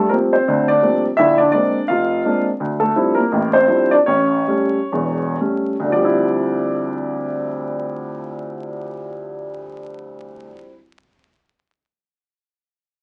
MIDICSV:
0, 0, Header, 1, 2, 480
1, 0, Start_track
1, 0, Key_signature, -1, "minor"
1, 0, Tempo, 355872
1, 1592, Time_signature, 4, 2, 24, 8
1, 4462, Tempo, 382409
1, 5422, Tempo, 426439
1, 6382, Tempo, 481155
1, 6862, Tempo, 509771
1, 10222, Tempo, 515907
1, 13991, End_track
2, 0, Start_track
2, 0, Title_t, "Upright piano"
2, 0, Program_c, 0, 0
2, 126, Note_on_c, 0, 70, 72
2, 139, Note_on_c, 0, 53, 51
2, 147, Note_on_c, 0, 55, 45
2, 150, Note_on_c, 0, 60, 59
2, 154, Note_on_c, 0, 57, 48
2, 157, Note_on_c, 0, 58, 55
2, 196, Note_off_c, 0, 70, 0
2, 224, Note_off_c, 0, 58, 0
2, 442, Note_on_c, 0, 72, 73
2, 455, Note_off_c, 0, 60, 0
2, 462, Note_off_c, 0, 53, 0
2, 466, Note_off_c, 0, 55, 0
2, 470, Note_off_c, 0, 57, 0
2, 475, Note_on_c, 0, 60, 57
2, 647, Note_on_c, 0, 50, 68
2, 649, Note_on_c, 0, 38, 69
2, 912, Note_off_c, 0, 60, 0
2, 920, Note_on_c, 0, 74, 86
2, 943, Note_off_c, 0, 72, 0
2, 947, Note_on_c, 0, 62, 63
2, 1055, Note_off_c, 0, 38, 0
2, 1055, Note_off_c, 0, 50, 0
2, 1113, Note_on_c, 0, 53, 43
2, 1117, Note_on_c, 0, 55, 42
2, 1118, Note_on_c, 0, 60, 52
2, 1120, Note_on_c, 0, 57, 39
2, 1120, Note_on_c, 0, 58, 39
2, 1373, Note_off_c, 0, 74, 0
2, 1388, Note_off_c, 0, 62, 0
2, 1431, Note_off_c, 0, 53, 0
2, 1433, Note_off_c, 0, 55, 0
2, 1434, Note_off_c, 0, 57, 0
2, 1434, Note_off_c, 0, 60, 0
2, 1435, Note_off_c, 0, 58, 0
2, 1575, Note_on_c, 0, 76, 100
2, 1595, Note_on_c, 0, 50, 66
2, 1596, Note_on_c, 0, 64, 76
2, 1603, Note_on_c, 0, 34, 62
2, 1858, Note_on_c, 0, 74, 76
2, 1859, Note_off_c, 0, 76, 0
2, 1870, Note_off_c, 0, 64, 0
2, 1887, Note_on_c, 0, 62, 69
2, 2002, Note_off_c, 0, 50, 0
2, 2006, Note_off_c, 0, 34, 0
2, 2027, Note_off_c, 0, 74, 0
2, 2045, Note_off_c, 0, 62, 0
2, 2047, Note_on_c, 0, 74, 84
2, 2065, Note_on_c, 0, 62, 66
2, 2075, Note_on_c, 0, 56, 50
2, 2082, Note_on_c, 0, 58, 46
2, 2089, Note_on_c, 0, 60, 49
2, 2386, Note_off_c, 0, 56, 0
2, 2390, Note_off_c, 0, 58, 0
2, 2394, Note_off_c, 0, 60, 0
2, 2499, Note_off_c, 0, 74, 0
2, 2509, Note_off_c, 0, 62, 0
2, 2536, Note_on_c, 0, 77, 81
2, 2554, Note_on_c, 0, 65, 65
2, 2570, Note_on_c, 0, 29, 68
2, 2968, Note_off_c, 0, 29, 0
2, 3036, Note_on_c, 0, 56, 49
2, 3037, Note_on_c, 0, 58, 41
2, 3040, Note_on_c, 0, 62, 51
2, 3047, Note_on_c, 0, 60, 42
2, 3261, Note_off_c, 0, 77, 0
2, 3270, Note_off_c, 0, 65, 0
2, 3344, Note_off_c, 0, 56, 0
2, 3344, Note_off_c, 0, 58, 0
2, 3346, Note_off_c, 0, 62, 0
2, 3349, Note_off_c, 0, 60, 0
2, 3510, Note_on_c, 0, 38, 65
2, 3773, Note_on_c, 0, 69, 74
2, 3805, Note_on_c, 0, 57, 55
2, 3915, Note_off_c, 0, 38, 0
2, 3994, Note_on_c, 0, 53, 52
2, 3995, Note_on_c, 0, 60, 48
2, 3998, Note_on_c, 0, 55, 46
2, 3998, Note_on_c, 0, 64, 59
2, 4005, Note_on_c, 0, 62, 46
2, 4235, Note_off_c, 0, 69, 0
2, 4246, Note_on_c, 0, 70, 76
2, 4251, Note_off_c, 0, 57, 0
2, 4287, Note_on_c, 0, 58, 60
2, 4308, Note_off_c, 0, 53, 0
2, 4308, Note_off_c, 0, 60, 0
2, 4309, Note_off_c, 0, 64, 0
2, 4310, Note_off_c, 0, 55, 0
2, 4313, Note_off_c, 0, 62, 0
2, 4476, Note_on_c, 0, 33, 74
2, 4480, Note_on_c, 0, 45, 69
2, 4726, Note_off_c, 0, 58, 0
2, 4745, Note_on_c, 0, 72, 79
2, 4753, Note_off_c, 0, 70, 0
2, 4771, Note_on_c, 0, 60, 61
2, 4873, Note_off_c, 0, 33, 0
2, 4875, Note_off_c, 0, 45, 0
2, 4906, Note_off_c, 0, 60, 0
2, 4921, Note_on_c, 0, 55, 44
2, 4925, Note_on_c, 0, 60, 44
2, 4925, Note_on_c, 0, 64, 55
2, 4928, Note_on_c, 0, 53, 46
2, 4935, Note_on_c, 0, 62, 42
2, 5219, Note_on_c, 0, 74, 83
2, 5228, Note_off_c, 0, 62, 0
2, 5246, Note_off_c, 0, 72, 0
2, 5247, Note_on_c, 0, 62, 69
2, 5249, Note_off_c, 0, 55, 0
2, 5251, Note_off_c, 0, 60, 0
2, 5251, Note_off_c, 0, 64, 0
2, 5253, Note_off_c, 0, 53, 0
2, 5282, Note_off_c, 0, 74, 0
2, 5310, Note_off_c, 0, 62, 0
2, 5408, Note_on_c, 0, 73, 84
2, 5420, Note_on_c, 0, 33, 65
2, 5429, Note_on_c, 0, 61, 69
2, 5820, Note_off_c, 0, 33, 0
2, 5875, Note_off_c, 0, 61, 0
2, 5876, Note_on_c, 0, 55, 52
2, 5887, Note_on_c, 0, 57, 45
2, 5892, Note_on_c, 0, 61, 52
2, 6206, Note_off_c, 0, 55, 0
2, 6211, Note_off_c, 0, 57, 0
2, 6214, Note_off_c, 0, 61, 0
2, 6380, Note_on_c, 0, 40, 63
2, 6384, Note_on_c, 0, 28, 62
2, 6793, Note_off_c, 0, 40, 0
2, 6796, Note_off_c, 0, 28, 0
2, 6818, Note_off_c, 0, 73, 0
2, 6859, Note_on_c, 0, 55, 41
2, 6861, Note_on_c, 0, 57, 42
2, 6863, Note_on_c, 0, 61, 50
2, 7180, Note_off_c, 0, 55, 0
2, 7180, Note_off_c, 0, 57, 0
2, 7181, Note_off_c, 0, 61, 0
2, 7228, Note_on_c, 0, 38, 59
2, 7273, Note_on_c, 0, 50, 58
2, 7325, Note_on_c, 0, 53, 55
2, 7347, Note_on_c, 0, 74, 74
2, 7375, Note_on_c, 0, 55, 53
2, 7420, Note_on_c, 0, 60, 53
2, 7465, Note_on_c, 0, 64, 65
2, 11628, Note_off_c, 0, 38, 0
2, 11672, Note_off_c, 0, 50, 0
2, 11708, Note_off_c, 0, 74, 0
2, 11723, Note_off_c, 0, 53, 0
2, 11773, Note_off_c, 0, 55, 0
2, 11817, Note_off_c, 0, 60, 0
2, 11862, Note_off_c, 0, 64, 0
2, 13991, End_track
0, 0, End_of_file